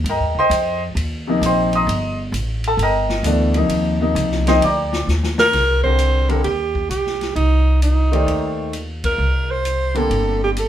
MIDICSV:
0, 0, Header, 1, 5, 480
1, 0, Start_track
1, 0, Tempo, 457317
1, 59, Time_signature, 4, 2, 24, 8
1, 11215, End_track
2, 0, Start_track
2, 0, Title_t, "Alto saxophone"
2, 0, Program_c, 0, 65
2, 5663, Note_on_c, 0, 70, 119
2, 6101, Note_off_c, 0, 70, 0
2, 6126, Note_on_c, 0, 72, 96
2, 6612, Note_on_c, 0, 69, 89
2, 6628, Note_off_c, 0, 72, 0
2, 6755, Note_off_c, 0, 69, 0
2, 6761, Note_on_c, 0, 67, 81
2, 7210, Note_off_c, 0, 67, 0
2, 7243, Note_on_c, 0, 67, 78
2, 7692, Note_off_c, 0, 67, 0
2, 7719, Note_on_c, 0, 63, 89
2, 8170, Note_off_c, 0, 63, 0
2, 8215, Note_on_c, 0, 63, 69
2, 8970, Note_off_c, 0, 63, 0
2, 9500, Note_on_c, 0, 70, 97
2, 9982, Note_on_c, 0, 72, 90
2, 9998, Note_off_c, 0, 70, 0
2, 10465, Note_on_c, 0, 69, 92
2, 10481, Note_off_c, 0, 72, 0
2, 10940, Note_off_c, 0, 69, 0
2, 10957, Note_on_c, 0, 67, 81
2, 11025, Note_off_c, 0, 67, 0
2, 11118, Note_on_c, 0, 69, 71
2, 11215, Note_off_c, 0, 69, 0
2, 11215, End_track
3, 0, Start_track
3, 0, Title_t, "Grand piano"
3, 0, Program_c, 1, 0
3, 97, Note_on_c, 1, 79, 65
3, 100, Note_on_c, 1, 70, 60
3, 101, Note_on_c, 1, 75, 63
3, 102, Note_on_c, 1, 82, 82
3, 387, Note_off_c, 1, 79, 0
3, 389, Note_off_c, 1, 70, 0
3, 389, Note_off_c, 1, 75, 0
3, 390, Note_off_c, 1, 82, 0
3, 406, Note_on_c, 1, 84, 102
3, 413, Note_on_c, 1, 75, 84
3, 415, Note_on_c, 1, 79, 81
3, 416, Note_on_c, 1, 72, 89
3, 838, Note_off_c, 1, 84, 0
3, 841, Note_off_c, 1, 75, 0
3, 842, Note_off_c, 1, 79, 0
3, 843, Note_off_c, 1, 72, 0
3, 1336, Note_on_c, 1, 48, 83
3, 1342, Note_on_c, 1, 53, 69
3, 1348, Note_on_c, 1, 58, 62
3, 1361, Note_on_c, 1, 63, 79
3, 1530, Note_on_c, 1, 84, 79
3, 1534, Note_on_c, 1, 72, 72
3, 1536, Note_on_c, 1, 79, 64
3, 1539, Note_on_c, 1, 75, 61
3, 1822, Note_off_c, 1, 84, 0
3, 1823, Note_off_c, 1, 72, 0
3, 1825, Note_off_c, 1, 79, 0
3, 1826, Note_off_c, 1, 75, 0
3, 1842, Note_on_c, 1, 82, 70
3, 1842, Note_on_c, 1, 87, 88
3, 1849, Note_on_c, 1, 75, 67
3, 1849, Note_on_c, 1, 84, 66
3, 1942, Note_off_c, 1, 48, 0
3, 1945, Note_off_c, 1, 53, 0
3, 1948, Note_off_c, 1, 58, 0
3, 1955, Note_off_c, 1, 63, 0
3, 2273, Note_off_c, 1, 87, 0
3, 2274, Note_off_c, 1, 82, 0
3, 2277, Note_off_c, 1, 75, 0
3, 2277, Note_off_c, 1, 84, 0
3, 2808, Note_on_c, 1, 69, 73
3, 2809, Note_on_c, 1, 81, 92
3, 2945, Note_off_c, 1, 69, 0
3, 2946, Note_off_c, 1, 81, 0
3, 2966, Note_on_c, 1, 75, 75
3, 2966, Note_on_c, 1, 79, 73
3, 2968, Note_on_c, 1, 82, 89
3, 2971, Note_on_c, 1, 70, 70
3, 3395, Note_off_c, 1, 75, 0
3, 3395, Note_off_c, 1, 79, 0
3, 3396, Note_off_c, 1, 82, 0
3, 3398, Note_off_c, 1, 70, 0
3, 3404, Note_on_c, 1, 47, 69
3, 3411, Note_on_c, 1, 52, 59
3, 3417, Note_on_c, 1, 57, 61
3, 3425, Note_on_c, 1, 62, 74
3, 3693, Note_off_c, 1, 47, 0
3, 3696, Note_off_c, 1, 52, 0
3, 3700, Note_off_c, 1, 57, 0
3, 3704, Note_off_c, 1, 62, 0
3, 3729, Note_on_c, 1, 48, 65
3, 3730, Note_on_c, 1, 53, 68
3, 3740, Note_on_c, 1, 58, 63
3, 3746, Note_on_c, 1, 63, 75
3, 4144, Note_off_c, 1, 48, 0
3, 4144, Note_off_c, 1, 53, 0
3, 4149, Note_off_c, 1, 58, 0
3, 4152, Note_off_c, 1, 63, 0
3, 4199, Note_on_c, 1, 48, 69
3, 4203, Note_on_c, 1, 53, 58
3, 4211, Note_on_c, 1, 58, 58
3, 4218, Note_on_c, 1, 63, 68
3, 4650, Note_off_c, 1, 48, 0
3, 4652, Note_off_c, 1, 53, 0
3, 4656, Note_off_c, 1, 58, 0
3, 4659, Note_off_c, 1, 63, 0
3, 4685, Note_on_c, 1, 53, 67
3, 4687, Note_on_c, 1, 48, 77
3, 4700, Note_on_c, 1, 58, 69
3, 4700, Note_on_c, 1, 63, 91
3, 4700, Note_on_c, 1, 79, 81
3, 4701, Note_on_c, 1, 75, 67
3, 4703, Note_on_c, 1, 84, 96
3, 4704, Note_on_c, 1, 72, 80
3, 4830, Note_off_c, 1, 53, 0
3, 4831, Note_off_c, 1, 48, 0
3, 4837, Note_off_c, 1, 58, 0
3, 4838, Note_off_c, 1, 63, 0
3, 4849, Note_off_c, 1, 75, 0
3, 4849, Note_off_c, 1, 79, 0
3, 4851, Note_off_c, 1, 72, 0
3, 4851, Note_off_c, 1, 84, 0
3, 4874, Note_on_c, 1, 86, 83
3, 4877, Note_on_c, 1, 74, 66
3, 4881, Note_on_c, 1, 79, 67
3, 4881, Note_on_c, 1, 82, 65
3, 5307, Note_off_c, 1, 86, 0
3, 5309, Note_off_c, 1, 74, 0
3, 5311, Note_off_c, 1, 79, 0
3, 5311, Note_off_c, 1, 82, 0
3, 6126, Note_on_c, 1, 50, 58
3, 6130, Note_on_c, 1, 55, 56
3, 6135, Note_on_c, 1, 60, 54
3, 6140, Note_on_c, 1, 65, 52
3, 6142, Note_on_c, 1, 70, 66
3, 6573, Note_off_c, 1, 50, 0
3, 6576, Note_off_c, 1, 55, 0
3, 6578, Note_off_c, 1, 60, 0
3, 6581, Note_off_c, 1, 65, 0
3, 6582, Note_off_c, 1, 70, 0
3, 6601, Note_on_c, 1, 50, 65
3, 6601, Note_on_c, 1, 55, 62
3, 6602, Note_on_c, 1, 60, 57
3, 6609, Note_on_c, 1, 65, 51
3, 6620, Note_on_c, 1, 70, 69
3, 6748, Note_off_c, 1, 50, 0
3, 6748, Note_off_c, 1, 55, 0
3, 6748, Note_off_c, 1, 60, 0
3, 6752, Note_off_c, 1, 65, 0
3, 6758, Note_off_c, 1, 70, 0
3, 8520, Note_on_c, 1, 51, 69
3, 8526, Note_on_c, 1, 57, 63
3, 8528, Note_on_c, 1, 74, 59
3, 8536, Note_on_c, 1, 67, 61
3, 8536, Note_on_c, 1, 72, 70
3, 9134, Note_off_c, 1, 51, 0
3, 9138, Note_off_c, 1, 57, 0
3, 9138, Note_off_c, 1, 74, 0
3, 9143, Note_off_c, 1, 67, 0
3, 9143, Note_off_c, 1, 72, 0
3, 10439, Note_on_c, 1, 50, 69
3, 10439, Note_on_c, 1, 55, 58
3, 10446, Note_on_c, 1, 60, 58
3, 10451, Note_on_c, 1, 65, 63
3, 10460, Note_on_c, 1, 58, 74
3, 11056, Note_off_c, 1, 50, 0
3, 11057, Note_off_c, 1, 55, 0
3, 11060, Note_off_c, 1, 60, 0
3, 11063, Note_off_c, 1, 65, 0
3, 11067, Note_off_c, 1, 58, 0
3, 11215, End_track
4, 0, Start_track
4, 0, Title_t, "Upright bass"
4, 0, Program_c, 2, 32
4, 44, Note_on_c, 2, 43, 84
4, 208, Note_on_c, 2, 39, 55
4, 224, Note_off_c, 2, 43, 0
4, 359, Note_off_c, 2, 39, 0
4, 365, Note_on_c, 2, 36, 63
4, 515, Note_off_c, 2, 36, 0
4, 521, Note_on_c, 2, 41, 95
4, 993, Note_off_c, 2, 41, 0
4, 998, Note_on_c, 2, 39, 85
4, 1471, Note_off_c, 2, 39, 0
4, 1484, Note_on_c, 2, 34, 88
4, 1953, Note_off_c, 2, 34, 0
4, 1960, Note_on_c, 2, 31, 92
4, 2431, Note_off_c, 2, 31, 0
4, 2438, Note_on_c, 2, 33, 92
4, 2904, Note_off_c, 2, 33, 0
4, 2910, Note_on_c, 2, 31, 86
4, 3384, Note_off_c, 2, 31, 0
4, 3390, Note_on_c, 2, 38, 91
4, 3864, Note_off_c, 2, 38, 0
4, 3870, Note_on_c, 2, 39, 82
4, 4343, Note_off_c, 2, 39, 0
4, 4356, Note_on_c, 2, 36, 86
4, 4826, Note_off_c, 2, 36, 0
4, 4841, Note_on_c, 2, 38, 85
4, 5309, Note_off_c, 2, 38, 0
4, 5325, Note_on_c, 2, 39, 84
4, 5791, Note_off_c, 2, 39, 0
4, 5801, Note_on_c, 2, 36, 80
4, 6722, Note_off_c, 2, 36, 0
4, 6766, Note_on_c, 2, 39, 75
4, 7213, Note_off_c, 2, 39, 0
4, 7234, Note_on_c, 2, 35, 71
4, 7687, Note_off_c, 2, 35, 0
4, 7719, Note_on_c, 2, 36, 78
4, 8644, Note_off_c, 2, 36, 0
4, 8675, Note_on_c, 2, 39, 73
4, 9603, Note_off_c, 2, 39, 0
4, 9636, Note_on_c, 2, 36, 73
4, 10564, Note_off_c, 2, 36, 0
4, 10598, Note_on_c, 2, 31, 78
4, 11215, Note_off_c, 2, 31, 0
4, 11215, End_track
5, 0, Start_track
5, 0, Title_t, "Drums"
5, 59, Note_on_c, 9, 51, 62
5, 164, Note_off_c, 9, 51, 0
5, 536, Note_on_c, 9, 44, 52
5, 536, Note_on_c, 9, 51, 74
5, 641, Note_off_c, 9, 44, 0
5, 641, Note_off_c, 9, 51, 0
5, 1016, Note_on_c, 9, 51, 61
5, 1121, Note_off_c, 9, 51, 0
5, 1498, Note_on_c, 9, 44, 51
5, 1498, Note_on_c, 9, 51, 66
5, 1603, Note_off_c, 9, 44, 0
5, 1603, Note_off_c, 9, 51, 0
5, 1814, Note_on_c, 9, 51, 41
5, 1919, Note_off_c, 9, 51, 0
5, 1983, Note_on_c, 9, 51, 64
5, 2088, Note_off_c, 9, 51, 0
5, 2454, Note_on_c, 9, 44, 46
5, 2454, Note_on_c, 9, 51, 62
5, 2559, Note_off_c, 9, 44, 0
5, 2559, Note_off_c, 9, 51, 0
5, 2770, Note_on_c, 9, 51, 50
5, 2875, Note_off_c, 9, 51, 0
5, 2930, Note_on_c, 9, 51, 60
5, 3034, Note_off_c, 9, 51, 0
5, 3245, Note_on_c, 9, 38, 46
5, 3350, Note_off_c, 9, 38, 0
5, 3403, Note_on_c, 9, 44, 61
5, 3403, Note_on_c, 9, 51, 66
5, 3508, Note_off_c, 9, 44, 0
5, 3508, Note_off_c, 9, 51, 0
5, 3717, Note_on_c, 9, 51, 49
5, 3822, Note_off_c, 9, 51, 0
5, 3878, Note_on_c, 9, 51, 62
5, 3983, Note_off_c, 9, 51, 0
5, 4367, Note_on_c, 9, 44, 59
5, 4367, Note_on_c, 9, 51, 62
5, 4472, Note_off_c, 9, 44, 0
5, 4472, Note_off_c, 9, 51, 0
5, 4529, Note_on_c, 9, 38, 29
5, 4634, Note_off_c, 9, 38, 0
5, 4691, Note_on_c, 9, 51, 56
5, 4697, Note_on_c, 9, 38, 49
5, 4796, Note_off_c, 9, 51, 0
5, 4802, Note_off_c, 9, 38, 0
5, 4850, Note_on_c, 9, 51, 66
5, 4955, Note_off_c, 9, 51, 0
5, 5172, Note_on_c, 9, 38, 64
5, 5277, Note_off_c, 9, 38, 0
5, 5336, Note_on_c, 9, 44, 47
5, 5337, Note_on_c, 9, 38, 47
5, 5441, Note_off_c, 9, 44, 0
5, 5442, Note_off_c, 9, 38, 0
5, 5494, Note_on_c, 9, 38, 66
5, 5599, Note_off_c, 9, 38, 0
5, 5648, Note_on_c, 9, 38, 86
5, 5753, Note_off_c, 9, 38, 0
5, 5807, Note_on_c, 9, 38, 37
5, 5807, Note_on_c, 9, 49, 59
5, 5809, Note_on_c, 9, 36, 65
5, 5912, Note_off_c, 9, 38, 0
5, 5912, Note_off_c, 9, 49, 0
5, 5914, Note_off_c, 9, 36, 0
5, 6126, Note_on_c, 9, 36, 43
5, 6231, Note_off_c, 9, 36, 0
5, 6283, Note_on_c, 9, 44, 49
5, 6283, Note_on_c, 9, 51, 59
5, 6388, Note_off_c, 9, 44, 0
5, 6388, Note_off_c, 9, 51, 0
5, 6606, Note_on_c, 9, 51, 38
5, 6711, Note_off_c, 9, 51, 0
5, 6761, Note_on_c, 9, 51, 47
5, 6866, Note_off_c, 9, 51, 0
5, 7086, Note_on_c, 9, 36, 53
5, 7190, Note_off_c, 9, 36, 0
5, 7249, Note_on_c, 9, 44, 52
5, 7249, Note_on_c, 9, 51, 53
5, 7353, Note_off_c, 9, 44, 0
5, 7353, Note_off_c, 9, 51, 0
5, 7415, Note_on_c, 9, 38, 26
5, 7520, Note_off_c, 9, 38, 0
5, 7569, Note_on_c, 9, 51, 36
5, 7572, Note_on_c, 9, 38, 33
5, 7674, Note_off_c, 9, 51, 0
5, 7677, Note_off_c, 9, 38, 0
5, 7726, Note_on_c, 9, 51, 50
5, 7831, Note_off_c, 9, 51, 0
5, 8209, Note_on_c, 9, 44, 53
5, 8209, Note_on_c, 9, 51, 62
5, 8314, Note_off_c, 9, 44, 0
5, 8314, Note_off_c, 9, 51, 0
5, 8534, Note_on_c, 9, 51, 43
5, 8639, Note_off_c, 9, 51, 0
5, 8690, Note_on_c, 9, 51, 50
5, 8795, Note_off_c, 9, 51, 0
5, 9165, Note_on_c, 9, 44, 43
5, 9165, Note_on_c, 9, 51, 52
5, 9270, Note_off_c, 9, 44, 0
5, 9270, Note_off_c, 9, 51, 0
5, 9486, Note_on_c, 9, 51, 62
5, 9489, Note_on_c, 9, 36, 68
5, 9591, Note_off_c, 9, 51, 0
5, 9594, Note_off_c, 9, 36, 0
5, 10129, Note_on_c, 9, 44, 45
5, 10129, Note_on_c, 9, 51, 59
5, 10234, Note_off_c, 9, 44, 0
5, 10234, Note_off_c, 9, 51, 0
5, 10448, Note_on_c, 9, 51, 43
5, 10553, Note_off_c, 9, 51, 0
5, 10609, Note_on_c, 9, 51, 48
5, 10714, Note_off_c, 9, 51, 0
5, 11090, Note_on_c, 9, 44, 49
5, 11090, Note_on_c, 9, 51, 53
5, 11195, Note_off_c, 9, 44, 0
5, 11195, Note_off_c, 9, 51, 0
5, 11215, End_track
0, 0, End_of_file